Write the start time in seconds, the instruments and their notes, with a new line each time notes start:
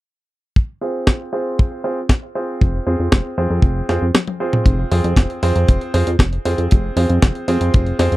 0.56 kick
0.81 grand piano C4 F4 G#4 C5
1.07 kick, snare
1.33 grand piano C4 F4 G#4 C5
1.59 kick
1.84 grand piano C4 F4 G#4 C5
2.09 kick, snare
2.35 grand piano C4 F4 G#4 C5
2.61 analog synth bass F1, kick
2.86 analog synth bass F2, grand piano C4 F4 G#4 C5
2.99 analog synth bass F2
3.12 analog synth bass F1, kick, snare
3.38 analog synth bass F2, grand piano C4 F4 G#4 C5
3.50 analog synth bass F2
3.62 analog synth bass F1, kick
3.89 analog synth bass F2, grand piano C4 F4 G#4 C5, snare
4.02 analog synth bass F2
4.15 snare, high tom
4.27 high tom
4.40 grand piano C4 F4 G#4 C5
4.53 mid tom
4.66 analog synth bass F1, kick, closed hi-hat
4.91 analog synth bass F2, grand piano C4 F4 G#4 C5, open hi-hat
5.04 analog synth bass F2, closed hi-hat
5.16 analog synth bass F1, kick, snare, closed hi-hat
5.30 closed hi-hat
5.43 analog synth bass F2, grand piano C4 F4 G#4 C5, open hi-hat
5.56 analog synth bass F2, closed hi-hat
5.68 analog synth bass F1, kick, closed hi-hat
5.81 closed hi-hat
5.94 analog synth bass F2, grand piano C4 F4 G#4 C5, open hi-hat
6.07 analog synth bass F2, closed hi-hat
6.19 analog synth bass F1, kick, snare, closed hi-hat
6.33 closed hi-hat
6.45 analog synth bass F2, grand piano C4 F4 G#4 C5, open hi-hat
6.58 analog synth bass F2, closed hi-hat
6.71 analog synth bass F1, kick, closed hi-hat
6.97 analog synth bass F2, grand piano C4 F4 G#4 C5, open hi-hat
7.09 analog synth bass F2, closed hi-hat
7.22 analog synth bass F1, kick, snare, closed hi-hat
7.35 closed hi-hat
7.48 analog synth bass F2, grand piano C4 F4 G#4 C5, open hi-hat
7.61 analog synth bass F2, closed hi-hat
7.74 analog synth bass F1, kick, closed hi-hat
7.86 closed hi-hat
7.99 analog synth bass F2, grand piano C4 F4 G#4 C5, snare, open hi-hat
8.12 analog synth bass F2, closed hi-hat